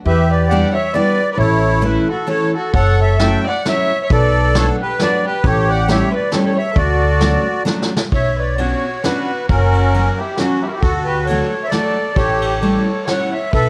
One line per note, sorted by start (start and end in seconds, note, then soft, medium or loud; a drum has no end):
0.05 0.63 E2 loud
0.05 0.70 G4 medium
0.05 0.29 B4 loud
0.05 0.31 E5 loud
0.30 0.48 B4 medium
0.30 0.50 D5 medium
0.49 0.74 G3 medium
0.49 0.75 B3 medium
0.49 0.75 D4 medium
0.49 0.75 E4 medium
0.49 0.75 G4 medium
0.49 0.72 D5 loud
0.49 0.74 F#5 loud
0.73 0.93 C#5 medium
0.73 0.94 E5 loud
0.94 1.18 G3 medium
0.94 1.18 B3 medium
0.94 1.19 D4 medium
0.94 1.18 E4 medium
0.94 1.19 G4 medium
0.94 1.30 B4 loud
0.94 1.30 D5 loud
1.31 1.38 B4 medium
1.31 1.38 D5 medium
1.37 1.96 A1 loud
1.37 2.03 E4 medium
1.37 1.80 A4 medium
1.37 1.84 C#5 loud
1.81 2.07 E3 medium
1.81 2.07 A3 medium
1.81 2.07 C#4 medium
1.81 2.07 E4 medium
1.81 2.07 A4 medium
1.81 2.08 B4 medium
1.86 2.07 E4 medium
2.08 2.28 F#4 medium
2.08 2.29 A4 medium
2.27 2.53 E3 medium
2.27 2.53 A3 medium
2.27 2.53 C#4 medium
2.27 2.53 E4 medium
2.27 2.53 A4 medium
2.27 2.52 C#5 loud
2.53 2.72 A4 medium
2.57 2.74 F#4 medium
2.73 3.33 F#1 medium
2.73 3.41 A4 medium
2.73 2.98 C#5 medium
2.73 3.00 F#5 loud
2.73 kick medium
2.73 closed hi-hat soft
3.02 3.19 C#5 medium
3.02 3.21 E5 loud
3.19 3.45 F#3 medium
3.19 3.45 A3 medium
3.19 3.45 C#4 medium
3.19 3.46 E4 medium
3.19 3.46 F#4 medium
3.19 3.43 E5 loud
3.19 3.47 G5 loud
3.19 snare medium
3.19 closed hi-hat medium
3.47 3.65 D5 medium
3.47 3.67 F#5 loud
3.65 3.90 F#3 medium
3.65 3.91 A3 medium
3.65 3.91 C#4 medium
3.65 3.91 E4 medium
3.65 3.91 F#4 medium
3.65 4.02 C#5 loud
3.65 4.04 E5 loud
3.65 snare medium
3.65 closed hi-hat soft
4.03 4.09 C#5 medium
4.03 4.11 E5 medium
4.10 4.69 B1 loud
4.10 4.76 A4 medium
4.10 4.53 B4 medium
4.10 4.57 D5 loud
4.10 kick medium
4.10 closed hi-hat soft
4.55 4.80 F#3 medium
4.55 4.80 A3 medium
4.55 4.81 B3 medium
4.55 4.81 D4 medium
4.55 4.81 F#4 medium
4.55 4.69 A4 loud
4.55 4.67 C#5 loud
4.55 snare medium
4.55 closed hi-hat medium
4.82 4.99 G4 medium
4.82 5.01 B4 loud
4.99 5.25 F#3 medium
4.99 5.25 A3 medium
4.99 5.25 B3 medium
4.99 5.25 D4 medium
4.99 5.25 F#4 medium
4.99 5.23 B4 loud
4.99 5.26 D5 loud
4.99 snare medium
4.99 closed hi-hat soft
5.26 5.45 G4 medium
5.26 5.46 B4 medium
5.44 6.01 A1 loud
5.44 6.09 G4 medium
5.44 5.68 A4 medium
5.44 5.70 C#5 loud
5.44 kick medium
5.44 closed hi-hat soft
5.69 5.88 D5 medium
5.69 5.89 F#5 loud
5.88 6.12 G3 medium
5.88 6.12 A3 medium
5.88 6.13 C#4 medium
5.88 6.13 E4 medium
5.88 6.13 G4 medium
5.88 6.12 C#5 loud
5.88 6.14 E5 loud
5.88 snare medium
5.88 closed hi-hat medium
6.14 6.32 B4 medium
6.14 6.34 D5 medium
6.32 6.57 G3 medium
6.32 6.56 A3 medium
6.32 6.57 C#4 medium
6.32 6.57 E4 medium
6.32 6.57 G4 medium
6.32 6.36 A4 loud
6.32 snare medium
6.32 closed hi-hat soft
6.36 6.43 A4 medium
6.36 6.39 C#5 loud
6.41 6.54 A4 medium
6.41 6.44 C#5 medium
6.46 6.58 C#5 loud
6.55 6.73 C#5 medium
6.55 6.78 E5 loud
6.74 7.35 D2 loud
6.74 7.63 F#4 medium
6.74 7.62 A4 medium
6.74 7.63 D5 loud
6.74 kick loud
6.74 closed hi-hat soft
7.21 7.46 F#3 medium
7.21 7.47 A3 medium
7.21 7.47 C#4 medium
7.21 7.47 D4 medium
7.21 7.47 F#4 medium
7.21 snare medium
7.21 closed hi-hat soft
7.65 7.91 F#3 medium
7.65 7.92 A3 medium
7.65 7.92 C#4 medium
7.65 7.92 D4 medium
7.65 7.92 F#4 medium
7.65 snare medium
7.82 snare medium
7.96 snare medium
8.12 8.72 B1 medium
8.12 8.36 C#5 medium
8.12 8.56 C#5 medium
8.12 8.39 E5 medium
8.12 kick medium
8.12 ride soft
8.38 8.58 B4 medium
8.38 8.60 D5 medium
8.58 8.84 B3 medium
8.58 8.84 C#4 medium
8.58 8.84 D4 medium
8.58 9.01 F#4 medium
8.58 8.84 F#4 medium
8.58 9.05 C#5 medium
8.58 ride soft
9.04 9.29 B3 medium
9.04 9.29 C#4 medium
9.04 9.30 D4 medium
9.04 9.46 F#4 medium
9.04 9.30 F#4 medium
9.04 9.46 B4 medium
9.04 snare medium
9.04 ride soft
9.49 10.07 F#1 medium
9.49 10.15 C#4 medium
9.49 10.14 F#4 medium
9.49 10.20 A#4 loud
9.49 kick medium
9.49 ride soft
9.73 ride soft
9.94 10.19 F#3 medium
9.94 10.19 A#3 medium
9.94 10.19 C#4 medium
9.94 10.19 F#4 medium
9.94 ride soft
10.17 10.38 E4 medium
10.17 10.38 G4 medium
10.37 10.63 F#3 medium
10.37 10.64 A#3 medium
10.37 10.61 C#4 medium
10.37 10.64 C#4 medium
10.37 10.63 F#4 medium
10.37 snare medium
10.37 ride soft
10.42 10.64 F#4 medium
10.62 10.67 E4 medium
10.62 10.67 G4 medium
10.67 10.71 F#4 medium
10.67 10.72 A#4 medium
10.71 10.79 E4 medium
10.71 10.82 G4 medium
10.79 11.40 D2 loud
10.79 11.04 F#4 medium
10.79 11.47 F#4 medium
10.79 11.07 A4 loud
10.79 kick medium
10.79 ride soft
11.05 11.24 G4 medium
11.05 11.27 B4 loud
11.24 11.61 A4 medium
11.24 11.66 C#5 medium
11.24 ride soft
11.29 11.53 F#3 medium
11.29 11.53 A3 medium
11.29 11.53 D4 medium
11.29 11.53 F#4 medium
11.64 11.69 C#5 medium
11.64 11.71 E5 medium
11.69 11.97 A3 medium
11.69 12.12 A4 medium
11.69 12.17 D5 loud
11.69 snare medium
11.69 ride soft
11.73 11.97 F#3 medium
11.73 11.97 D4 medium
11.73 11.97 F#4 medium
12.14 12.76 A1 medium
12.14 12.83 G4 medium
12.14 12.57 A4 medium
12.14 12.60 C#5 loud
12.14 kick medium
12.14 ride soft
12.42 ride soft
12.60 12.87 G3 medium
12.60 12.87 A3 medium
12.60 12.87 C#4 soft
12.60 12.87 E4 medium
12.60 13.03 A4 medium
12.60 13.09 C#5 medium
12.60 ride soft
13.07 13.33 G3 medium
13.07 13.34 A3 medium
13.07 13.33 C#4 medium
13.07 13.34 E4 medium
13.07 13.32 C#5 medium
13.07 13.34 F#5 loud
13.07 snare medium
13.07 ride soft
13.33 13.52 C#5 medium
13.33 13.52 E5 medium
13.52 13.69 B1 medium
13.52 13.69 A4 medium
13.52 13.69 B4 medium
13.52 13.69 E5 loud
13.52 kick medium
13.52 ride soft